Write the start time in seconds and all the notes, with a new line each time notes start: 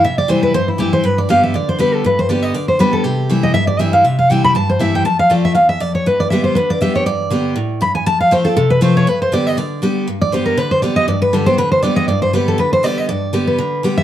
0.04 C3 E5
0.18 D5
0.28 E3 G3 C4 E4 C5
0.43 B4
0.54 G2 C5
0.68 E4
0.78 E3 G3 C4 E4 G4
0.93 C5
1.04 G2 B4
1.18 D5
1.29 D3 G3 B3 G4 F5
1.44 E5
1.54 D3 D5
1.69 C5
1.79 D3 G3 B3 G4 B4
1.94 A4
2.04 G2 B4
2.19 C5
2.29 D3 G3 B3 G4 D5
2.42 D#5
2.54 D3 D5
2.68 C5
2.79 D3 G3 B3 G4 B4
2.93 A4
3.04 C3 G4
3.29 E3 G3 C4 E4
3.43 D#5
3.54 G2 E5
3.67 D5
3.79 E3 G3 C4 E4 E5
3.93 F5
4.05 C3 E5
4.19 F5
4.30 E3 G3 C4 E4 G5
4.44 B5
4.55 G2 A5
4.69 C5
4.79 E3 G3 C4 E4 E5
4.95 G5
5.05 F2 A5
5.19 F5
5.30 F3 A3 C4 F4 D5
5.45 E5
5.55 E2 F5
5.69 E5
5.80 F2 D5
5.95 C#5
6.06 G2 B4
6.20 D5
6.30 D3 G3 B3 G4 E5
6.44 C5
6.55 D3 B4
6.70 D5
6.81 D3 G3 B3 G4 E5
6.95 B3 G4 C#5
7.06 G2 D5
7.30 D3 G3 B3 G4
7.56 A2
7.81 G2 B5
7.95 G#5
8.06 F2 A5
8.21 F5
8.31 F3 A3 C4 F4 C5
8.45 C4 F4 A4
8.57 C3 A4
8.70 B4
8.81 F3 A3 C4 F4 C5
8.97 C#5
9.07 G2 B4
9.22 C5
9.32 D3 G3 B3 G4 D5
9.47 D#5
9.57 D3 D5
9.82 D3 G3 B3 G4
10.08 G2
10.21 D5
10.32 D3 G3 B3 G4 C5
10.46 A#4
10.57 D3 B4
10.71 C5
10.82 D3 G3 B3 G4 D5
10.96 D#5
11.08 G2 D5
11.22 B4
11.33 D3 G3 B3 G4 A4
11.46 B3 G4 C5
11.58 D3 B4
11.72 C5
11.83 D3 G3 B3 G4 D5
11.96 D#5
12.08 G2 D5
12.22 C5
12.33 D3 G3 B3 G4 B4
12.48 A4
12.58 D3 B4
12.73 C5
12.83 D3 G3 B3 G4 D5
12.98 D#5
13.09 G2 D5
13.33 D3 G3 B3 G4
13.47 B4
13.59 D3
13.83 D3 G3 B3 G4
13.98 E5